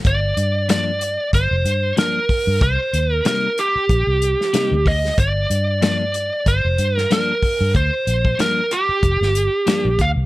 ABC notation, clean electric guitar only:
X:1
M:4/4
L:1/8
Q:"Swing 16ths" 1/4=94
K:Gm
V:1 name="Clean electric guitar" clef=bass
z2 [G,,F,B,D] z3 [G,,F,B,D] z | z2 [C,G,B,E] z3 [C,G,B,E] z | z2 [G,,F,B,D] z3 [G,,F,B,D] z | z2 [G,,F,B,D] z3 [G,,F,B,D] z |]